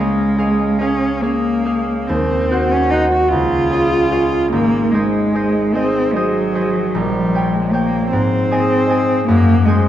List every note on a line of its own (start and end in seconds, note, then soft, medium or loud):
0.00 2.11 C#2 soft
0.00 0.80 G#3 medium
0.00 0.37 G#4 soft
0.00 0.37 C#5 soft
0.00 0.38 F5 soft
0.38 0.80 G#4 soft
0.38 0.80 C#5 soft
0.38 0.80 F5 soft
0.79 1.22 C#4 medium
0.79 1.21 G#4 soft
0.79 1.21 C#5 soft
0.79 1.22 F5 soft
1.21 2.09 A#3 medium
1.21 1.64 G#4 soft
1.21 1.65 C#5 soft
1.21 1.65 F5 soft
1.65 2.11 G#4 soft
1.65 2.11 C#5 soft
1.65 2.12 F5 soft
2.07 3.35 D#2 soft
2.07 2.73 C4 soft
2.51 2.92 F#4 soft
2.51 2.92 C5 soft
2.51 2.92 F#5 soft
2.71 2.92 C#4 medium
2.90 3.11 D#4 medium
2.90 3.35 F#4 soft
2.90 3.35 C5 soft
2.90 3.35 F#5 soft
3.12 3.30 F#4 soft
3.28 4.55 C#2 soft
3.28 4.50 F4 medium
3.70 4.10 G#4 soft
3.70 4.11 C#5 soft
3.70 4.11 F5 soft
4.11 4.93 G#4 soft
4.11 4.55 C#5 soft
4.11 4.55 F5 soft
4.51 6.97 G#1 soft
4.51 4.93 A#3 medium
4.92 5.76 G#3 medium
4.92 5.34 G#4 soft
4.92 5.34 C5 soft
4.92 5.35 D#5 soft
5.35 5.74 G#4 soft
5.35 5.75 C5 soft
5.35 5.75 D#5 soft
5.75 6.16 C4 medium
5.75 6.14 G#4 soft
5.75 6.15 C5 soft
5.75 6.15 D#5 soft
6.14 6.97 F#3 soft
6.14 6.54 G#4 soft
6.14 6.54 C5 soft
6.14 6.55 D#5 soft
6.55 6.97 G#4 soft
6.55 6.97 C5 soft
6.55 6.97 D#5 soft
6.95 8.16 A#1 soft
6.95 7.56 G3 medium
7.35 7.72 C#5 soft
7.35 7.73 G5 soft
7.54 7.75 G#3 soft
7.73 8.11 A#3 medium
7.73 8.15 C#5 soft
7.73 8.16 G5 soft
8.12 9.30 G#2 soft
8.12 9.24 C4 medium
8.51 8.88 G#4 soft
8.51 8.89 D#5 soft
8.51 8.89 G#5 soft
8.89 9.67 G#4 soft
8.89 9.88 D#5 soft
8.89 9.67 G#5 soft
9.27 9.88 F#2 soft
9.27 9.67 A#3 medium
9.66 9.88 G#3 medium
9.66 9.88 G#4 soft
9.66 9.88 C5 soft
9.66 9.88 G#5 soft